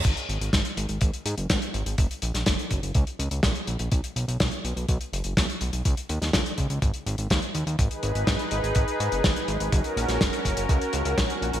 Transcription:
<<
  \new Staff \with { instrumentName = "Analog synth pad" } { \time 4/4 \key fis \mixolydian \tempo 4 = 124 r1 | r1 | r1 | r1 |
<dis' gis' b'>1 | <cis' fis' ais'>1 | }
  \new Staff \with { instrumentName = "Analog synth bass" } { \clef bass \time 4/4 \key fis \mixolydian gis,,16 r16 gis,,16 gis,,16 gis,,16 r16 gis,,16 gis,,16 gis,,16 r16 gis,16 fis,,16 gis,,16 r16 gis,,16 gis,,16 | fis,,16 r16 ais,,16 ais,,16 fis,,16 r16 fis,,16 fis,,16 cis,16 r16 cis,16 cis,16 ais,,16 r16 ais,,16 ais,,16 | b,,16 r16 b,,16 b,,16 b,,16 r16 b,,16 b,,16 b,,16 r16 fis,,16 fis,,16 b,,16 r16 b,,16 b,,16 | cis,16 r16 dis,16 dis,16 cis,16 r16 cis,16 cis,16 gis,,16 r16 gis,,16 gis,,16 dis,16 r16 dis,16 dis,16 |
gis,,16 r16 gis,,16 gis,,16 gis,,16 r16 gis,,16 gis,,16 gis,,16 r16 gis,16 fis,,16 gis,,16 r16 gis,,16 gis,,16 | fis,,16 r16 ais,,16 ais,,16 fis,,16 r16 fis,,16 fis,,16 cis,16 r16 cis,16 cis,16 ais,,16 r16 ais,,16 ais,,16 | }
  \new DrumStaff \with { instrumentName = "Drums" } \drummode { \time 4/4 <cymc hh bd>16 hh16 hh16 hh16 <hh bd sn>16 hh16 hh16 hh16 <hh bd>16 hh16 hh16 hh16 <hh bd sn>16 hh16 hh16 hh16 | <hh bd>16 hh16 hh16 <hh sn>16 <hh bd sn>16 hh16 <hh bd>16 hh16 <hh bd>16 hh16 hh16 hh16 <hh bd sn>16 hh16 hh16 hh16 | <hh bd>16 hh16 hh16 hh16 <hh bd sn>16 hh16 hh16 hh16 <hh bd>16 hh16 hh16 hh16 <hh bd sn>16 hh16 hh16 hh16 | <hh bd>16 hh16 hh16 <hh sn>16 <hh bd sn>16 hh16 <hh bd>16 hh16 <hh bd>16 hh16 hh16 hh16 <hh bd sn>16 hh16 hh16 hh16 |
<hh bd>16 hh16 hh16 hh16 <hh bd sn>16 hh16 hh16 hh16 <hh bd>16 hh16 hh16 hh16 <hh bd sn>16 hh16 hh16 hh16 | <hh bd>16 hh16 hh16 <hh sn>16 <hh bd sn>16 hh16 <hh bd>16 hh16 <hh bd>16 hh16 hh16 hh16 <hh bd sn>16 hh16 hh16 hh16 | }
>>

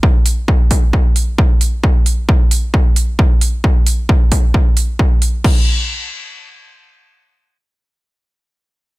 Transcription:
\new DrumStaff \with { instrumentName = "Drums" } \drummode { \time 4/4 \tempo 4 = 133 bd8 hho8 bd8 <hho bd>8 bd8 hho8 bd8 hho8 | bd8 hho8 bd8 hho8 bd8 hho8 bd8 hho8 | bd8 hho8 bd8 <hho bd>8 bd8 hho8 bd8 hho8 | <cymc bd>4 r4 r4 r4 |
r4 r4 r4 r4 | }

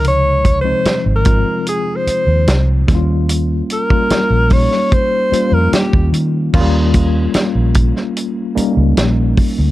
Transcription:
<<
  \new Staff \with { instrumentName = "Alto saxophone" } { \time 4/4 \key ees \dorian \tempo 4 = 74 \tuplet 3/2 { des''4 c''8~ c''8 bes'4 aes'8 c''4~ } c''16 r8. | r8 bes'4 des''8 c''8. bes'16 g'8 r8 | r1 | }
  \new Staff \with { instrumentName = "Tine electric piano" } { \time 4/4 \key ees \dorian <c f aes ees'>8 r16 <f aes c' ees'>8 r16 <f aes c' f'>4. r8 <g bes des' e' f'>8~ | <g bes des' e' f'>8 r16 <g bes des' f'>8 r16 <g bes des' ees'>8. r16 <g bes des' f'>4~ <g bes des' f'>16 r16 | <ges g bes des' f'>4. r4 <g bes des' ees'>4~ <g bes des' ees'>16 r16 | }
  \new Staff \with { instrumentName = "Fingered electric bass" } { \clef bass \time 4/4 \key ees \dorian des,4 r16 aes,,8 r4 ees,16 c,8 ees,8~ | ees,8 r8. bes,,8 r4 f,16 r16 ees,16 ees8 | ees,4 r16 bes,,8 r4 des,16 bes,,8 r16 d,16 | }
  \new DrumStaff \with { instrumentName = "Drums" } \drummode { \time 4/4 hh8 <hh bd>8 <hh sn>8 <hh bd>8 hh8 hh8 <hh sn>8 <hh bd sn>8 | hh8 hh16 bd16 <hh sn>8 <hho bd>16 sn16 <hh bd>8 hh8 <hh sn>16 bd16 hh8 | <cymc bd>8 <hh bd>8 <hh sn>8 <hh bd>16 sn16 hh8 hh8 <hh sn>8 <hho bd>8 | }
>>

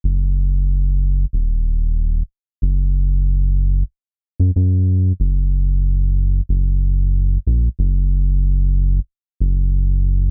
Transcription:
\new Staff \with { instrumentName = "Analog synth bass" } { \clef bass \time 4/4 \key fis \major \tempo 4 = 93 fis,,4.~ fis,,16 r16 dis,,4~ dis,,16 r8. | fis,,4.~ fis,,16 r4 fis,16 fis,8. r16 | fis,,4.~ fis,,16 r16 fis,,4~ fis,,16 r16 ais,,16 r16 | fis,,4.~ fis,,16 r8. fis,,4~ fis,,16 r16 | }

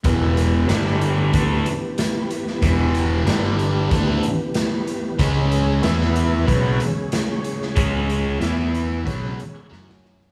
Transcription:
<<
  \new Staff \with { instrumentName = "Tonewheel organ" } { \time 4/4 \key e \dorian \tempo 4 = 93 << { <e b'>4 <d d''>4 <e b'>2~ | <e b'>4 <d d''>4 <e b'>2 | <cis cis''>4 <e e''>4 <cis cis''>2~ | <cis cis''>4 <e e''>4 <cis cis''>2 | } \\ { g'1~ | g'1 | gis'4 b'4 gis'2~ | gis'4 b'4 gis'4 fis'4 | } >> }
  \new Staff \with { instrumentName = "Tonewheel organ" } { \clef bass \time 4/4 \key e \dorian b4 g4 b2~ | b4 g4 b2 | gis4 b4 gis2~ | gis4 b4 gis4 fis4 | }
  \new Staff \with { instrumentName = "Distorted electric guitar" } { \clef bass \time 4/4 \key e \dorian <e, b, e>4 <g, d g>4 <d a d'>8 r4. | <e, b, e>4 <g, d g>4 <d a d'>8 r4. | <cis gis cis'>4 <e b e'>4 <b, fis b>8 r4. | <cis gis cis'>4 <e b e'>4 <b, fis b>8 r8 <fis cis' fis'>4 | }
  \new Staff \with { instrumentName = "Fingered electric bass" } { \clef bass \time 4/4 \key e \dorian e,,4 g,,4 d,8 r4. | e,,4 g,,4 d,8 r4. | cis,4 e,4 b,,8 r4. | cis,4 e,4 b,,8 r8 fis,4 | }
  \new DrumStaff \with { instrumentName = "Drums" } \drummode { \time 4/4 <hh bd>8 hh8 <hh sn>16 sn16 hh8 <hh bd>8 hh8 <hh sn>8 hh16 sn16 | <hh bd>8 hh8 <hh sn>8 hh8 <hh bd>8 hh8 <hh sn>8 hh8 | <hh bd>8 hh8 <hh sn>16 sn16 hh8 <hh bd>8 hh8 <hh sn>8 hh16 sn16 | <hh bd>8 hh8 <hh sn>8 hh8 <hh bd>8 hh8 sn16 sn16 sn16 sn16 | }
>>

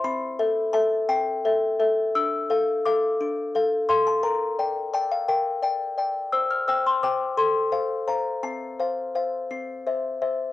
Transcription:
\new Staff \with { instrumentName = "Music box" } { \time 6/8 \key a \minor \tempo 4. = 57 << { b''4 a''8 g''4. | \key f \major e'''4 d'''4. c'''16 a''16 | bes''4 a''16 f''16 g''4. | e'''16 f'''16 e'''16 c'''16 d'''8 c'''4 bes''8 |
a''4. r4. | } \\ { c'8 <a' e''>8 <a' e''>8 c'8 <a' e''>8 <a' e''>8 | d'8 <a' f''>8 <a' f''>8 d'8 <a' f''>8 <a' f''>8 | bes'8 <d'' g''>8 <d'' g''>8 bes'8 <d'' g''>8 <d'' g''>8 | c''8 <c'' g''>8 <c'' g''>8 a'8 <c'' f''>8 <c'' f''>8 |
c'8 <c'' f''>8 <c'' f''>8 c'8 <c'' e''>8 <c'' e''>8 | } >> }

